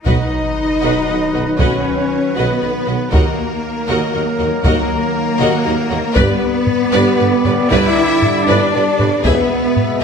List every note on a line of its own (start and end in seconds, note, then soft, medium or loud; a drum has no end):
0.05 0.14 B1 medium
0.05 0.17 B1 medium
0.05 3.08 D#3 medium
0.05 3.08 F#3 medium
0.05 1.55 D#4 medium
0.05 0.30 F#4 medium
0.05 0.30 B4 medium
0.05 3.08 B4 medium
0.05 1.55 D#5 medium
0.05 0.30 D#5 medium
0.05 0.30 F#5 medium
0.05 taiko medium
0.05 sub drop medium
0.82 0.93 B1 medium
0.82 0.92 B1 medium
0.82 1.06 F#4 medium
0.82 1.06 B4 medium
0.82 1.06 D#5 medium
0.82 1.06 F#5 medium
1.07 1.19 B1 soft
1.07 1.17 B1 soft
1.07 1.15 F#4 soft
1.07 1.15 B4 soft
1.07 1.17 D#5 soft
1.07 1.17 F#5 soft
1.33 1.42 B1 soft
1.33 1.44 B1 soft
1.33 1.42 F#4 soft
1.33 1.42 B4 soft
1.33 1.42 D#5 soft
1.33 1.41 F#5 soft
1.58 1.69 B1 medium
1.58 1.67 B1 medium
1.58 2.34 C#4 medium
1.58 1.83 F#4 medium
1.58 1.83 B4 medium
1.58 2.34 C#5 medium
1.58 1.83 D#5 medium
1.58 1.83 F#5 medium
1.58 taiko medium
2.35 2.44 B1 medium
2.35 2.47 B1 medium
2.35 3.12 B3 medium
2.35 2.60 F#4 medium
2.35 3.12 B4 medium
2.35 2.60 B4 medium
2.35 2.60 D#5 medium
2.35 2.60 F#5 medium
2.61 2.72 B1 soft
2.61 2.70 B1 soft
2.61 2.69 F#4 soft
2.61 2.69 B4 soft
2.61 2.70 D#5 soft
2.61 2.69 F#5 soft
2.86 2.95 B1 soft
2.86 2.98 B1 soft
2.86 2.94 F#4 medium
2.86 2.94 B4 soft
2.86 2.95 D#5 soft
2.86 2.95 F#5 soft
3.11 3.21 D#2 medium
3.11 3.23 D#2 medium
3.11 5.99 D#3 medium
3.11 5.99 F#3 medium
3.11 4.61 A#3 medium
3.11 3.36 F#4 medium
3.11 3.36 A#4 medium
3.11 4.61 A#4 medium
3.11 6.12 A#4 medium
3.11 3.36 D#5 medium
3.11 3.36 F#5 medium
3.11 taiko medium
3.88 3.97 D#2 medium
3.88 4.00 D#2 medium
3.88 4.12 F#4 medium
3.88 4.12 A#4 medium
3.88 4.12 D#5 medium
3.88 4.12 F#5 medium
4.13 4.22 D#2 medium
4.13 4.25 D#2 soft
4.13 4.22 F#4 medium
4.13 4.21 A#4 soft
4.13 4.22 D#5 medium
4.13 4.22 F#5 medium
4.38 4.48 D#2 medium
4.38 4.50 D#2 medium
4.38 4.47 F#4 medium
4.38 4.46 A#4 medium
4.38 4.47 D#5 medium
4.38 4.47 F#5 medium
4.64 4.72 D#2 medium
4.64 4.76 D#2 medium
4.64 6.13 A#3 medium
4.64 4.88 F#4 medium
4.64 6.13 A#4 medium
4.64 4.88 A#4 medium
4.64 4.88 D#5 medium
4.64 4.87 F#5 medium
4.64 taiko medium
5.39 5.47 D#2 medium
5.39 5.50 D#2 medium
5.39 5.64 F#4 medium
5.39 5.64 A#4 medium
5.39 5.63 D#5 medium
5.39 5.63 F#5 medium
5.65 5.75 D#2 medium
5.65 5.74 D#2 medium
5.65 5.73 F#4 medium
5.65 5.73 A#4 medium
5.65 5.73 D#5 medium
5.65 5.73 F#5 medium
5.89 6.01 D#2 medium
5.89 5.99 D#2 medium
5.89 5.99 F#4 medium
5.89 5.99 A#4 medium
5.89 5.97 D#5 medium
5.89 5.97 F#5 medium
6.15 6.26 G1 medium
6.15 6.24 G2 medium
6.15 9.21 D3 medium
6.15 9.21 G3 medium
6.15 7.67 B3 medium
6.15 7.70 B3 loud
6.15 6.40 G4 medium
6.15 6.39 B4 medium
6.15 7.71 B4 medium
6.15 6.40 B4 medium
6.15 6.39 D5 medium
6.15 9.08 D5 medium
6.15 taiko medium
6.67 taiko low-mid medium
6.92 7.03 G1 medium
6.92 7.01 G2 medium
6.92 7.17 G4 medium
6.92 7.17 B4 medium
6.92 7.17 D5 medium
7.18 7.30 G1 medium
7.18 7.27 G2 medium
7.18 7.27 G4 medium
7.18 7.26 B4 medium
7.18 7.27 B4 medium
7.18 7.27 D5 medium
7.45 7.56 G1 medium
7.45 7.53 G2 medium
7.45 7.53 G4 medium
7.45 7.53 B4 medium
7.45 7.54 B4 medium
7.45 7.53 D5 medium
7.45 taiko low-mid soft
7.70 7.81 G1 medium
7.70 7.79 G2 medium
7.70 8.48 E4 loud
7.70 7.95 G4 medium
7.70 7.95 B4 medium
7.70 7.95 D5 medium
7.70 8.46 E5 loud
7.70 taiko medium
8.22 taiko low-mid medium
8.47 8.59 G1 medium
8.47 8.56 G2 medium
8.47 9.07 D4 medium
8.47 9.25 D4 loud
8.47 8.72 G4 medium
8.47 8.72 B4 medium
8.47 9.23 D5 medium
8.47 8.72 D5 medium
8.73 8.85 G1 medium
8.73 8.82 G2 medium
8.73 8.81 G4 medium
8.73 8.81 B4 medium
8.73 8.83 B4 medium
8.73 8.83 D5 medium
8.98 9.10 G1 medium
8.98 9.07 G2 medium
8.98 9.06 G4 medium
8.98 9.06 B4 medium
8.98 9.09 B4 medium
8.98 9.08 D5 medium
8.98 taiko low-mid soft
9.24 9.36 E1 medium
9.24 9.33 E2 medium
9.24 10.04 B2 medium
9.24 10.04 G#3 medium
9.24 10.00 B3 medium
9.24 10.02 B3 loud
9.24 9.48 G#4 medium
9.24 10.03 B4 medium
9.24 9.49 B4 medium
9.24 10.04 E5 medium
9.24 9.49 E5 medium
9.24 taiko loud
9.76 taiko low-mid medium
10.01 10.04 A#3 medium